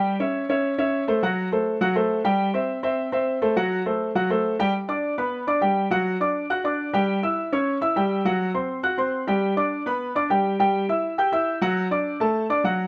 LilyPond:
\new Staff \with { instrumentName = "Grand piano" } { \time 4/4 \key g \major \tempo 4 = 205 <g g' g''>8 <cis' cis'' e''>4 <cis' cis'' e''>4 <cis' cis'' e''>4 <a a' c''>8 | <fis fis' fis''>4 <a a' c''>4 <fis fis' fis''>8 <a a' c''>4 <g g' g''>8~ | <g g' g''>8 <c' c'' e''>4 <c' c'' e''>4 <c' c'' e''>4 <a a' c''>8 | <fis fis' fis''>4 <a a' c''>4 <fis fis' fis''>8 <a a' c''>4 <g g' g''>8 |
r8 <d' d'' d'''>4 <b b' b''>4 <d' d'' d'''>8 <g g' g''>4 | <fis fis' fis''>4 <d' d'' d'''>4 <fis' fis'' fis'''>8 <d' d'' d'''>4 <g g' g''>8~ | <g g' g''>8 <e' e'' e'''>4 <cis' cis'' cis'''>4 <e' e'' e'''>8 <g g' g''>4 | <fis fis' fis''>4 <c' c'' c'''>4 <fis' fis'' fis'''>8 <c' c'' c'''>4 <g g' g''>8~ |
<g g' g''>8 <d' d'' d'''>4 <b b' b''>4 <d' d'' d'''>8 <g g' g''>4 | <g g' g''>4 <e' e'' e'''>4 <g' g'' g'''>8 <e' e'' e'''>4 <fis fis' fis''>8~ | <fis fis' fis''>8 <d' d'' d'''>4 <a a' a''>4 <d' d'' d'''>8 <fis fis' fis''>4 | }